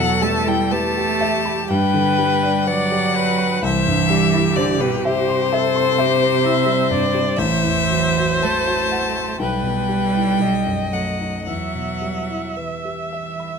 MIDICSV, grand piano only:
0, 0, Header, 1, 2, 480
1, 0, Start_track
1, 0, Key_signature, 1, "minor"
1, 0, Tempo, 983607
1, 1305, Tempo, 943396
1, 1791, Time_signature, 4, 2, 24, 8
1, 3705, Tempo, 1041667
1, 4185, Tempo, 988468
1, 5145, Tempo, 1086957
1, 6549, End_track
2, 0, Start_track
2, 0, Title_t, "Grand piano"
2, 0, Program_c, 0, 0
2, 0, Control_c, 0, 64, 127
2, 0, Note_on_c, 0, 40, 84
2, 0, Note_on_c, 0, 47, 63
2, 105, Note_on_c, 0, 55, 67
2, 177, Note_off_c, 0, 47, 0
2, 225, Note_on_c, 0, 64, 63
2, 299, Note_off_c, 0, 55, 0
2, 348, Note_on_c, 0, 71, 68
2, 418, Note_off_c, 0, 64, 0
2, 474, Note_on_c, 0, 67, 65
2, 538, Note_off_c, 0, 71, 0
2, 589, Note_on_c, 0, 76, 73
2, 660, Note_off_c, 0, 67, 0
2, 709, Note_on_c, 0, 83, 63
2, 777, Note_off_c, 0, 76, 0
2, 801, Note_off_c, 0, 40, 0
2, 826, Note_off_c, 0, 83, 0
2, 830, Note_on_c, 0, 43, 81
2, 832, Control_c, 0, 64, 0
2, 921, Control_c, 0, 64, 127
2, 946, Note_on_c, 0, 50, 67
2, 1065, Note_on_c, 0, 55, 60
2, 1139, Note_off_c, 0, 50, 0
2, 1185, Note_on_c, 0, 62, 70
2, 1258, Note_off_c, 0, 55, 0
2, 1302, Note_on_c, 0, 71, 66
2, 1379, Note_off_c, 0, 62, 0
2, 1429, Note_on_c, 0, 67, 69
2, 1500, Note_off_c, 0, 71, 0
2, 1547, Note_on_c, 0, 74, 68
2, 1623, Note_off_c, 0, 67, 0
2, 1666, Note_on_c, 0, 83, 69
2, 1742, Note_off_c, 0, 74, 0
2, 1775, Note_off_c, 0, 43, 0
2, 1788, Note_on_c, 0, 36, 90
2, 1789, Note_off_c, 0, 83, 0
2, 1800, Control_c, 0, 64, 0
2, 1870, Control_c, 0, 64, 127
2, 1911, Note_on_c, 0, 43, 70
2, 2031, Note_on_c, 0, 55, 67
2, 2101, Note_off_c, 0, 43, 0
2, 2151, Note_on_c, 0, 64, 69
2, 2221, Note_off_c, 0, 55, 0
2, 2267, Note_on_c, 0, 72, 70
2, 2342, Note_off_c, 0, 64, 0
2, 2391, Note_on_c, 0, 67, 77
2, 2463, Note_off_c, 0, 72, 0
2, 2515, Note_on_c, 0, 76, 75
2, 2588, Note_off_c, 0, 67, 0
2, 2631, Note_on_c, 0, 84, 70
2, 2710, Note_off_c, 0, 76, 0
2, 2756, Note_on_c, 0, 76, 79
2, 2826, Note_off_c, 0, 84, 0
2, 2874, Note_on_c, 0, 84, 82
2, 2945, Note_off_c, 0, 76, 0
2, 2989, Note_on_c, 0, 76, 75
2, 3061, Note_off_c, 0, 84, 0
2, 3106, Note_on_c, 0, 72, 67
2, 3176, Note_off_c, 0, 76, 0
2, 3223, Note_on_c, 0, 64, 66
2, 3295, Note_off_c, 0, 72, 0
2, 3333, Note_on_c, 0, 55, 65
2, 3414, Note_off_c, 0, 64, 0
2, 3457, Note_on_c, 0, 43, 67
2, 3529, Note_off_c, 0, 55, 0
2, 3579, Note_on_c, 0, 55, 62
2, 3653, Note_off_c, 0, 43, 0
2, 3682, Note_off_c, 0, 36, 0
2, 3700, Note_on_c, 0, 33, 82
2, 3703, Note_off_c, 0, 55, 0
2, 3714, Control_c, 0, 64, 0
2, 3779, Control_c, 0, 64, 127
2, 3817, Note_on_c, 0, 40, 62
2, 3940, Note_on_c, 0, 54, 58
2, 4015, Note_off_c, 0, 40, 0
2, 4065, Note_on_c, 0, 66, 56
2, 4137, Note_off_c, 0, 54, 0
2, 4181, Note_on_c, 0, 72, 63
2, 4259, Note_off_c, 0, 66, 0
2, 4301, Note_on_c, 0, 66, 61
2, 4376, Note_off_c, 0, 72, 0
2, 4419, Note_on_c, 0, 78, 64
2, 4490, Note_off_c, 0, 66, 0
2, 4540, Note_on_c, 0, 84, 58
2, 4607, Note_off_c, 0, 78, 0
2, 4635, Note_off_c, 0, 33, 0
2, 4652, Note_on_c, 0, 35, 67
2, 4656, Note_off_c, 0, 84, 0
2, 4665, Control_c, 0, 64, 0
2, 4734, Control_c, 0, 64, 127
2, 4766, Note_on_c, 0, 47, 53
2, 4892, Note_on_c, 0, 55, 50
2, 4965, Note_off_c, 0, 47, 0
2, 5017, Note_on_c, 0, 64, 45
2, 5092, Note_off_c, 0, 55, 0
2, 5127, Note_off_c, 0, 35, 0
2, 5135, Note_on_c, 0, 35, 50
2, 5143, Note_off_c, 0, 64, 0
2, 5153, Control_c, 0, 64, 0
2, 5225, Control_c, 0, 64, 127
2, 5256, Note_on_c, 0, 42, 40
2, 5369, Note_on_c, 0, 57, 39
2, 5444, Note_off_c, 0, 42, 0
2, 5493, Note_on_c, 0, 63, 38
2, 5562, Note_off_c, 0, 57, 0
2, 5596, Note_off_c, 0, 35, 0
2, 5611, Note_on_c, 0, 40, 45
2, 5614, Note_off_c, 0, 63, 0
2, 5622, Control_c, 0, 64, 0
2, 5697, Control_c, 0, 64, 127
2, 5736, Note_on_c, 0, 47, 33
2, 5855, Note_on_c, 0, 55, 36
2, 5929, Note_off_c, 0, 47, 0
2, 5978, Note_on_c, 0, 64, 35
2, 6048, Note_off_c, 0, 55, 0
2, 6096, Note_on_c, 0, 71, 34
2, 6171, Note_off_c, 0, 64, 0
2, 6223, Note_on_c, 0, 67, 35
2, 6292, Note_off_c, 0, 71, 0
2, 6344, Note_on_c, 0, 76, 33
2, 6417, Note_off_c, 0, 67, 0
2, 6464, Note_on_c, 0, 83, 34
2, 6538, Note_off_c, 0, 76, 0
2, 6549, Note_off_c, 0, 40, 0
2, 6549, Note_off_c, 0, 83, 0
2, 6549, End_track
0, 0, End_of_file